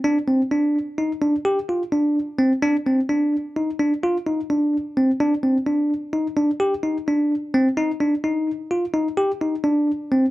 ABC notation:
X:1
M:11/8
L:1/8
Q:1/4=128
K:Cm
V:1 name="Tine electric piano"
D C D2 E D G F D2 C | D C D2 E D F E D2 C | D C D2 E D G E D2 C | E D E2 F E G E D2 C |]